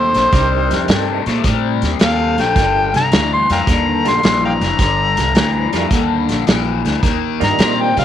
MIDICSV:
0, 0, Header, 1, 6, 480
1, 0, Start_track
1, 0, Key_signature, -2, "minor"
1, 0, Tempo, 558659
1, 283, Time_signature, 4, 2, 24, 8
1, 6916, End_track
2, 0, Start_track
2, 0, Title_t, "Harmonica"
2, 0, Program_c, 0, 22
2, 0, Note_on_c, 0, 72, 85
2, 747, Note_off_c, 0, 72, 0
2, 1743, Note_on_c, 0, 77, 95
2, 2071, Note_on_c, 0, 79, 88
2, 2084, Note_off_c, 0, 77, 0
2, 2523, Note_off_c, 0, 79, 0
2, 2548, Note_on_c, 0, 82, 88
2, 2846, Note_off_c, 0, 82, 0
2, 2864, Note_on_c, 0, 84, 93
2, 3009, Note_off_c, 0, 84, 0
2, 3025, Note_on_c, 0, 77, 66
2, 3025, Note_on_c, 0, 79, 66
2, 3025, Note_on_c, 0, 82, 95
2, 3085, Note_off_c, 0, 79, 0
2, 3099, Note_off_c, 0, 77, 0
2, 3512, Note_on_c, 0, 84, 80
2, 3525, Note_off_c, 0, 82, 0
2, 3808, Note_off_c, 0, 84, 0
2, 3826, Note_on_c, 0, 77, 69
2, 3826, Note_on_c, 0, 79, 69
2, 3826, Note_on_c, 0, 82, 98
2, 3889, Note_off_c, 0, 79, 0
2, 3890, Note_off_c, 0, 77, 0
2, 5219, Note_off_c, 0, 82, 0
2, 6392, Note_on_c, 0, 82, 91
2, 6708, Note_on_c, 0, 79, 90
2, 6721, Note_off_c, 0, 82, 0
2, 6849, Note_off_c, 0, 79, 0
2, 6864, Note_on_c, 0, 77, 100
2, 6916, Note_off_c, 0, 77, 0
2, 6916, End_track
3, 0, Start_track
3, 0, Title_t, "Tonewheel organ"
3, 0, Program_c, 1, 16
3, 279, Note_on_c, 1, 60, 62
3, 280, Note_on_c, 1, 62, 58
3, 281, Note_on_c, 1, 67, 53
3, 283, Note_on_c, 1, 63, 51
3, 284, Note_on_c, 1, 70, 68
3, 743, Note_off_c, 1, 62, 0
3, 744, Note_off_c, 1, 60, 0
3, 746, Note_off_c, 1, 67, 0
3, 746, Note_off_c, 1, 70, 0
3, 747, Note_off_c, 1, 63, 0
3, 754, Note_on_c, 1, 62, 55
3, 755, Note_on_c, 1, 60, 58
3, 756, Note_on_c, 1, 70, 62
3, 757, Note_on_c, 1, 63, 53
3, 757, Note_on_c, 1, 67, 51
3, 1050, Note_off_c, 1, 62, 0
3, 1051, Note_off_c, 1, 60, 0
3, 1052, Note_off_c, 1, 63, 0
3, 1052, Note_off_c, 1, 67, 0
3, 1052, Note_off_c, 1, 70, 0
3, 2192, Note_on_c, 1, 57, 52
3, 2193, Note_on_c, 1, 62, 44
3, 2195, Note_on_c, 1, 65, 49
3, 2197, Note_on_c, 1, 67, 50
3, 2199, Note_on_c, 1, 70, 57
3, 2489, Note_off_c, 1, 57, 0
3, 2490, Note_off_c, 1, 62, 0
3, 2491, Note_off_c, 1, 65, 0
3, 2492, Note_off_c, 1, 67, 0
3, 2493, Note_off_c, 1, 70, 0
3, 3477, Note_on_c, 1, 57, 64
3, 3478, Note_on_c, 1, 62, 62
3, 3482, Note_on_c, 1, 65, 62
3, 3484, Note_on_c, 1, 67, 58
3, 3486, Note_on_c, 1, 69, 76
3, 3621, Note_off_c, 1, 57, 0
3, 3622, Note_off_c, 1, 62, 0
3, 3624, Note_off_c, 1, 65, 0
3, 3625, Note_off_c, 1, 67, 0
3, 3626, Note_off_c, 1, 69, 0
3, 4921, Note_on_c, 1, 57, 68
3, 4923, Note_on_c, 1, 65, 68
3, 4925, Note_on_c, 1, 62, 65
3, 4926, Note_on_c, 1, 67, 68
3, 4929, Note_on_c, 1, 70, 82
3, 5063, Note_off_c, 1, 57, 0
3, 5064, Note_off_c, 1, 65, 0
3, 5065, Note_off_c, 1, 62, 0
3, 5065, Note_off_c, 1, 67, 0
3, 5067, Note_off_c, 1, 70, 0
3, 6357, Note_on_c, 1, 55, 78
3, 6360, Note_on_c, 1, 63, 65
3, 6361, Note_on_c, 1, 62, 78
3, 6361, Note_on_c, 1, 65, 75
3, 6362, Note_on_c, 1, 70, 88
3, 6916, Note_off_c, 1, 55, 0
3, 6916, Note_off_c, 1, 62, 0
3, 6916, Note_off_c, 1, 63, 0
3, 6916, Note_off_c, 1, 65, 0
3, 6916, Note_off_c, 1, 70, 0
3, 6916, End_track
4, 0, Start_track
4, 0, Title_t, "Overdriven electric guitar"
4, 0, Program_c, 2, 29
4, 0, Note_on_c, 2, 48, 74
4, 0, Note_on_c, 2, 57, 82
4, 96, Note_off_c, 2, 48, 0
4, 98, Note_off_c, 2, 57, 0
4, 132, Note_on_c, 2, 48, 73
4, 134, Note_on_c, 2, 57, 78
4, 269, Note_off_c, 2, 48, 0
4, 270, Note_off_c, 2, 57, 0
4, 289, Note_on_c, 2, 48, 69
4, 292, Note_on_c, 2, 55, 79
4, 735, Note_off_c, 2, 48, 0
4, 736, Note_off_c, 2, 55, 0
4, 763, Note_on_c, 2, 48, 75
4, 769, Note_on_c, 2, 57, 80
4, 1055, Note_off_c, 2, 48, 0
4, 1058, Note_off_c, 2, 57, 0
4, 1091, Note_on_c, 2, 48, 64
4, 1095, Note_on_c, 2, 57, 74
4, 1229, Note_off_c, 2, 48, 0
4, 1231, Note_off_c, 2, 57, 0
4, 1243, Note_on_c, 2, 48, 77
4, 1248, Note_on_c, 2, 55, 94
4, 1692, Note_off_c, 2, 48, 0
4, 1694, Note_off_c, 2, 55, 0
4, 1722, Note_on_c, 2, 48, 78
4, 1728, Note_on_c, 2, 57, 85
4, 2014, Note_off_c, 2, 48, 0
4, 2018, Note_off_c, 2, 57, 0
4, 2053, Note_on_c, 2, 48, 61
4, 2058, Note_on_c, 2, 57, 71
4, 2190, Note_off_c, 2, 48, 0
4, 2192, Note_off_c, 2, 57, 0
4, 2208, Note_on_c, 2, 43, 76
4, 2212, Note_on_c, 2, 50, 85
4, 2654, Note_off_c, 2, 43, 0
4, 2656, Note_off_c, 2, 50, 0
4, 2683, Note_on_c, 2, 43, 81
4, 2687, Note_on_c, 2, 52, 87
4, 2975, Note_off_c, 2, 43, 0
4, 2977, Note_off_c, 2, 52, 0
4, 3005, Note_on_c, 2, 43, 67
4, 3010, Note_on_c, 2, 52, 65
4, 3146, Note_off_c, 2, 43, 0
4, 3148, Note_off_c, 2, 52, 0
4, 3161, Note_on_c, 2, 43, 86
4, 3166, Note_on_c, 2, 50, 87
4, 3610, Note_off_c, 2, 43, 0
4, 3613, Note_off_c, 2, 50, 0
4, 3640, Note_on_c, 2, 43, 73
4, 3646, Note_on_c, 2, 52, 82
4, 3933, Note_off_c, 2, 43, 0
4, 3936, Note_off_c, 2, 52, 0
4, 3961, Note_on_c, 2, 43, 68
4, 3966, Note_on_c, 2, 52, 75
4, 4103, Note_off_c, 2, 43, 0
4, 4106, Note_off_c, 2, 52, 0
4, 4119, Note_on_c, 2, 43, 72
4, 4124, Note_on_c, 2, 50, 88
4, 4569, Note_off_c, 2, 43, 0
4, 4571, Note_off_c, 2, 50, 0
4, 4596, Note_on_c, 2, 43, 70
4, 4598, Note_on_c, 2, 52, 89
4, 4891, Note_off_c, 2, 43, 0
4, 4892, Note_off_c, 2, 52, 0
4, 4923, Note_on_c, 2, 43, 66
4, 4929, Note_on_c, 2, 52, 72
4, 5064, Note_off_c, 2, 43, 0
4, 5067, Note_off_c, 2, 52, 0
4, 5076, Note_on_c, 2, 43, 82
4, 5080, Note_on_c, 2, 50, 98
4, 5527, Note_off_c, 2, 43, 0
4, 5529, Note_off_c, 2, 50, 0
4, 5558, Note_on_c, 2, 43, 78
4, 5561, Note_on_c, 2, 52, 88
4, 5851, Note_off_c, 2, 43, 0
4, 5853, Note_off_c, 2, 52, 0
4, 5883, Note_on_c, 2, 43, 68
4, 5885, Note_on_c, 2, 52, 69
4, 6023, Note_off_c, 2, 43, 0
4, 6025, Note_off_c, 2, 52, 0
4, 6037, Note_on_c, 2, 51, 75
4, 6038, Note_on_c, 2, 58, 81
4, 6487, Note_off_c, 2, 51, 0
4, 6487, Note_off_c, 2, 58, 0
4, 6521, Note_on_c, 2, 51, 71
4, 6525, Note_on_c, 2, 60, 97
4, 6812, Note_off_c, 2, 51, 0
4, 6814, Note_off_c, 2, 60, 0
4, 6845, Note_on_c, 2, 51, 64
4, 6851, Note_on_c, 2, 60, 68
4, 6916, Note_off_c, 2, 51, 0
4, 6916, Note_off_c, 2, 60, 0
4, 6916, End_track
5, 0, Start_track
5, 0, Title_t, "Upright bass"
5, 0, Program_c, 3, 32
5, 0, Note_on_c, 3, 39, 83
5, 105, Note_off_c, 3, 39, 0
5, 127, Note_on_c, 3, 34, 84
5, 271, Note_off_c, 3, 34, 0
5, 281, Note_on_c, 3, 36, 90
5, 583, Note_off_c, 3, 36, 0
5, 603, Note_on_c, 3, 41, 87
5, 749, Note_off_c, 3, 41, 0
5, 759, Note_on_c, 3, 43, 87
5, 1062, Note_off_c, 3, 43, 0
5, 1084, Note_on_c, 3, 46, 86
5, 1229, Note_off_c, 3, 46, 0
5, 1240, Note_on_c, 3, 45, 85
5, 1542, Note_off_c, 3, 45, 0
5, 1566, Note_on_c, 3, 39, 90
5, 1710, Note_off_c, 3, 39, 0
5, 1716, Note_on_c, 3, 39, 98
5, 2020, Note_off_c, 3, 39, 0
5, 2043, Note_on_c, 3, 34, 86
5, 2189, Note_off_c, 3, 34, 0
5, 2199, Note_on_c, 3, 31, 85
5, 2501, Note_off_c, 3, 31, 0
5, 2522, Note_on_c, 3, 36, 90
5, 2668, Note_off_c, 3, 36, 0
5, 2680, Note_on_c, 3, 38, 81
5, 2982, Note_off_c, 3, 38, 0
5, 3006, Note_on_c, 3, 41, 84
5, 3150, Note_off_c, 3, 41, 0
5, 3155, Note_on_c, 3, 39, 100
5, 3459, Note_off_c, 3, 39, 0
5, 3486, Note_on_c, 3, 34, 82
5, 3630, Note_off_c, 3, 34, 0
5, 3641, Note_on_c, 3, 34, 100
5, 3942, Note_off_c, 3, 34, 0
5, 3962, Note_on_c, 3, 29, 86
5, 4108, Note_off_c, 3, 29, 0
5, 4114, Note_on_c, 3, 31, 92
5, 4418, Note_off_c, 3, 31, 0
5, 4446, Note_on_c, 3, 36, 88
5, 4590, Note_off_c, 3, 36, 0
5, 4597, Note_on_c, 3, 38, 88
5, 4900, Note_off_c, 3, 38, 0
5, 4923, Note_on_c, 3, 41, 80
5, 5068, Note_off_c, 3, 41, 0
5, 5076, Note_on_c, 3, 39, 91
5, 5379, Note_off_c, 3, 39, 0
5, 5406, Note_on_c, 3, 34, 86
5, 5550, Note_off_c, 3, 34, 0
5, 5564, Note_on_c, 3, 34, 86
5, 5863, Note_off_c, 3, 34, 0
5, 5886, Note_on_c, 3, 38, 85
5, 6029, Note_off_c, 3, 38, 0
5, 6040, Note_on_c, 3, 39, 86
5, 6341, Note_off_c, 3, 39, 0
5, 6367, Note_on_c, 3, 43, 90
5, 6510, Note_off_c, 3, 43, 0
5, 6517, Note_on_c, 3, 46, 85
5, 6819, Note_off_c, 3, 46, 0
5, 6847, Note_on_c, 3, 48, 90
5, 6916, Note_off_c, 3, 48, 0
5, 6916, End_track
6, 0, Start_track
6, 0, Title_t, "Drums"
6, 123, Note_on_c, 9, 42, 59
6, 138, Note_on_c, 9, 38, 32
6, 209, Note_off_c, 9, 42, 0
6, 224, Note_off_c, 9, 38, 0
6, 278, Note_on_c, 9, 42, 87
6, 281, Note_on_c, 9, 36, 119
6, 293, Note_on_c, 9, 38, 36
6, 364, Note_off_c, 9, 42, 0
6, 366, Note_off_c, 9, 36, 0
6, 379, Note_off_c, 9, 38, 0
6, 607, Note_on_c, 9, 42, 69
6, 622, Note_on_c, 9, 38, 37
6, 693, Note_off_c, 9, 42, 0
6, 708, Note_off_c, 9, 38, 0
6, 757, Note_on_c, 9, 42, 79
6, 773, Note_on_c, 9, 38, 101
6, 843, Note_off_c, 9, 42, 0
6, 859, Note_off_c, 9, 38, 0
6, 1083, Note_on_c, 9, 42, 56
6, 1098, Note_on_c, 9, 38, 30
6, 1169, Note_off_c, 9, 42, 0
6, 1184, Note_off_c, 9, 38, 0
6, 1236, Note_on_c, 9, 42, 84
6, 1239, Note_on_c, 9, 36, 101
6, 1251, Note_on_c, 9, 38, 30
6, 1322, Note_off_c, 9, 42, 0
6, 1325, Note_off_c, 9, 36, 0
6, 1337, Note_off_c, 9, 38, 0
6, 1561, Note_on_c, 9, 42, 65
6, 1577, Note_on_c, 9, 38, 39
6, 1647, Note_off_c, 9, 42, 0
6, 1663, Note_off_c, 9, 38, 0
6, 1713, Note_on_c, 9, 42, 78
6, 1728, Note_on_c, 9, 38, 107
6, 1798, Note_off_c, 9, 42, 0
6, 1814, Note_off_c, 9, 38, 0
6, 2043, Note_on_c, 9, 42, 57
6, 2058, Note_on_c, 9, 38, 34
6, 2129, Note_off_c, 9, 42, 0
6, 2144, Note_off_c, 9, 38, 0
6, 2197, Note_on_c, 9, 42, 78
6, 2198, Note_on_c, 9, 36, 116
6, 2213, Note_on_c, 9, 38, 38
6, 2283, Note_off_c, 9, 42, 0
6, 2284, Note_off_c, 9, 36, 0
6, 2298, Note_off_c, 9, 38, 0
6, 2525, Note_on_c, 9, 42, 58
6, 2541, Note_on_c, 9, 38, 38
6, 2611, Note_off_c, 9, 42, 0
6, 2627, Note_off_c, 9, 38, 0
6, 2677, Note_on_c, 9, 42, 73
6, 2692, Note_on_c, 9, 38, 103
6, 2763, Note_off_c, 9, 42, 0
6, 2778, Note_off_c, 9, 38, 0
6, 3003, Note_on_c, 9, 42, 60
6, 3018, Note_on_c, 9, 38, 31
6, 3089, Note_off_c, 9, 42, 0
6, 3104, Note_off_c, 9, 38, 0
6, 3154, Note_on_c, 9, 42, 79
6, 3156, Note_on_c, 9, 36, 105
6, 3169, Note_on_c, 9, 38, 35
6, 3240, Note_off_c, 9, 42, 0
6, 3242, Note_off_c, 9, 36, 0
6, 3255, Note_off_c, 9, 38, 0
6, 3482, Note_on_c, 9, 42, 60
6, 3497, Note_on_c, 9, 38, 38
6, 3568, Note_off_c, 9, 42, 0
6, 3583, Note_off_c, 9, 38, 0
6, 3636, Note_on_c, 9, 42, 81
6, 3652, Note_on_c, 9, 38, 97
6, 3722, Note_off_c, 9, 42, 0
6, 3737, Note_off_c, 9, 38, 0
6, 3963, Note_on_c, 9, 42, 58
6, 3979, Note_on_c, 9, 38, 35
6, 4049, Note_off_c, 9, 42, 0
6, 4065, Note_off_c, 9, 38, 0
6, 4113, Note_on_c, 9, 42, 89
6, 4115, Note_on_c, 9, 36, 107
6, 4129, Note_on_c, 9, 38, 39
6, 4199, Note_off_c, 9, 42, 0
6, 4201, Note_off_c, 9, 36, 0
6, 4215, Note_off_c, 9, 38, 0
6, 4441, Note_on_c, 9, 42, 68
6, 4456, Note_on_c, 9, 38, 38
6, 4527, Note_off_c, 9, 42, 0
6, 4542, Note_off_c, 9, 38, 0
6, 4595, Note_on_c, 9, 42, 83
6, 4611, Note_on_c, 9, 38, 96
6, 4681, Note_off_c, 9, 42, 0
6, 4697, Note_off_c, 9, 38, 0
6, 4920, Note_on_c, 9, 42, 67
6, 4935, Note_on_c, 9, 38, 34
6, 5006, Note_off_c, 9, 42, 0
6, 5021, Note_off_c, 9, 38, 0
6, 5075, Note_on_c, 9, 42, 87
6, 5076, Note_on_c, 9, 36, 103
6, 5090, Note_on_c, 9, 38, 36
6, 5161, Note_off_c, 9, 42, 0
6, 5162, Note_off_c, 9, 36, 0
6, 5176, Note_off_c, 9, 38, 0
6, 5402, Note_on_c, 9, 42, 63
6, 5417, Note_on_c, 9, 38, 35
6, 5488, Note_off_c, 9, 42, 0
6, 5503, Note_off_c, 9, 38, 0
6, 5558, Note_on_c, 9, 42, 74
6, 5574, Note_on_c, 9, 38, 103
6, 5644, Note_off_c, 9, 42, 0
6, 5660, Note_off_c, 9, 38, 0
6, 5887, Note_on_c, 9, 42, 58
6, 5903, Note_on_c, 9, 38, 36
6, 5973, Note_off_c, 9, 42, 0
6, 5989, Note_off_c, 9, 38, 0
6, 6039, Note_on_c, 9, 36, 119
6, 6041, Note_on_c, 9, 42, 81
6, 6056, Note_on_c, 9, 38, 36
6, 6125, Note_off_c, 9, 36, 0
6, 6127, Note_off_c, 9, 42, 0
6, 6142, Note_off_c, 9, 38, 0
6, 6366, Note_on_c, 9, 42, 64
6, 6382, Note_on_c, 9, 38, 37
6, 6452, Note_off_c, 9, 42, 0
6, 6468, Note_off_c, 9, 38, 0
6, 6518, Note_on_c, 9, 42, 77
6, 6533, Note_on_c, 9, 38, 115
6, 6604, Note_off_c, 9, 42, 0
6, 6619, Note_off_c, 9, 38, 0
6, 6846, Note_on_c, 9, 42, 58
6, 6862, Note_on_c, 9, 38, 36
6, 6916, Note_off_c, 9, 38, 0
6, 6916, Note_off_c, 9, 42, 0
6, 6916, End_track
0, 0, End_of_file